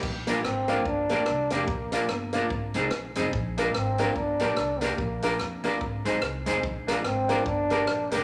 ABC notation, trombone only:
X:1
M:4/4
L:1/8
Q:"Swing" 1/4=145
K:Bbmix
V:1 name="Trombone"
z B, C2 D3 B,- | B,3 z4 z | z B, C2 D3 B,- | B,3 z4 z |
z B, C2 D3 B, |]